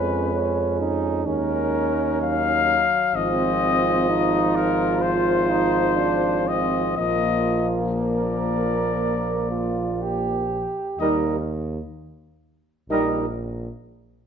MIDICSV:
0, 0, Header, 1, 6, 480
1, 0, Start_track
1, 0, Tempo, 941915
1, 1608, Time_signature, 4, 2, 24, 8
1, 3049, Tempo, 1003344
1, 5449, Tempo, 947867
1, 7104, End_track
2, 0, Start_track
2, 0, Title_t, "Trumpet"
2, 0, Program_c, 0, 56
2, 0, Note_on_c, 0, 71, 62
2, 501, Note_off_c, 0, 71, 0
2, 637, Note_on_c, 0, 70, 62
2, 1108, Note_off_c, 0, 70, 0
2, 1129, Note_on_c, 0, 77, 84
2, 1607, Note_on_c, 0, 75, 79
2, 1615, Note_off_c, 0, 77, 0
2, 2322, Note_on_c, 0, 70, 80
2, 2330, Note_off_c, 0, 75, 0
2, 2558, Note_on_c, 0, 72, 76
2, 2566, Note_off_c, 0, 70, 0
2, 3286, Note_on_c, 0, 75, 63
2, 3293, Note_off_c, 0, 72, 0
2, 3517, Note_off_c, 0, 75, 0
2, 3520, Note_on_c, 0, 75, 78
2, 3860, Note_off_c, 0, 75, 0
2, 4011, Note_on_c, 0, 74, 53
2, 5194, Note_off_c, 0, 74, 0
2, 5448, Note_on_c, 0, 75, 52
2, 5634, Note_off_c, 0, 75, 0
2, 6416, Note_on_c, 0, 75, 46
2, 6595, Note_off_c, 0, 75, 0
2, 7104, End_track
3, 0, Start_track
3, 0, Title_t, "Flugelhorn"
3, 0, Program_c, 1, 56
3, 0, Note_on_c, 1, 61, 42
3, 619, Note_off_c, 1, 61, 0
3, 642, Note_on_c, 1, 63, 47
3, 1452, Note_off_c, 1, 63, 0
3, 1607, Note_on_c, 1, 65, 57
3, 3506, Note_off_c, 1, 65, 0
3, 3524, Note_on_c, 1, 65, 45
3, 3955, Note_off_c, 1, 65, 0
3, 4013, Note_on_c, 1, 70, 51
3, 4719, Note_off_c, 1, 70, 0
3, 4732, Note_on_c, 1, 65, 39
3, 4979, Note_on_c, 1, 67, 42
3, 4987, Note_off_c, 1, 65, 0
3, 5449, Note_off_c, 1, 67, 0
3, 5452, Note_on_c, 1, 70, 55
3, 5637, Note_off_c, 1, 70, 0
3, 6413, Note_on_c, 1, 70, 52
3, 6594, Note_off_c, 1, 70, 0
3, 7104, End_track
4, 0, Start_track
4, 0, Title_t, "Trombone"
4, 0, Program_c, 2, 57
4, 0, Note_on_c, 2, 61, 38
4, 167, Note_off_c, 2, 61, 0
4, 170, Note_on_c, 2, 61, 47
4, 400, Note_off_c, 2, 61, 0
4, 405, Note_on_c, 2, 63, 54
4, 642, Note_on_c, 2, 61, 58
4, 649, Note_off_c, 2, 63, 0
4, 1469, Note_off_c, 2, 61, 0
4, 1609, Note_on_c, 2, 60, 58
4, 2064, Note_off_c, 2, 60, 0
4, 2087, Note_on_c, 2, 63, 70
4, 2554, Note_off_c, 2, 63, 0
4, 2558, Note_on_c, 2, 65, 67
4, 2803, Note_on_c, 2, 63, 65
4, 2811, Note_off_c, 2, 65, 0
4, 3046, Note_on_c, 2, 62, 55
4, 3053, Note_off_c, 2, 63, 0
4, 3285, Note_on_c, 2, 60, 51
4, 3292, Note_off_c, 2, 62, 0
4, 3523, Note_off_c, 2, 60, 0
4, 3526, Note_on_c, 2, 58, 45
4, 5195, Note_off_c, 2, 58, 0
4, 5451, Note_on_c, 2, 55, 51
4, 5636, Note_off_c, 2, 55, 0
4, 6414, Note_on_c, 2, 55, 52
4, 6595, Note_off_c, 2, 55, 0
4, 7104, End_track
5, 0, Start_track
5, 0, Title_t, "French horn"
5, 0, Program_c, 3, 60
5, 0, Note_on_c, 3, 56, 39
5, 967, Note_off_c, 3, 56, 0
5, 1126, Note_on_c, 3, 54, 51
5, 1609, Note_on_c, 3, 53, 52
5, 1617, Note_off_c, 3, 54, 0
5, 3522, Note_off_c, 3, 53, 0
5, 3525, Note_on_c, 3, 53, 45
5, 5273, Note_off_c, 3, 53, 0
5, 5454, Note_on_c, 3, 63, 50
5, 5638, Note_off_c, 3, 63, 0
5, 6413, Note_on_c, 3, 63, 52
5, 6594, Note_off_c, 3, 63, 0
5, 7104, End_track
6, 0, Start_track
6, 0, Title_t, "Bass trombone"
6, 0, Program_c, 4, 57
6, 0, Note_on_c, 4, 41, 45
6, 638, Note_on_c, 4, 39, 50
6, 646, Note_off_c, 4, 41, 0
6, 1467, Note_off_c, 4, 39, 0
6, 1603, Note_on_c, 4, 32, 59
6, 3504, Note_off_c, 4, 32, 0
6, 3523, Note_on_c, 4, 34, 45
6, 5272, Note_off_c, 4, 34, 0
6, 5441, Note_on_c, 4, 39, 58
6, 5849, Note_off_c, 4, 39, 0
6, 6407, Note_on_c, 4, 34, 52
6, 6807, Note_off_c, 4, 34, 0
6, 7104, End_track
0, 0, End_of_file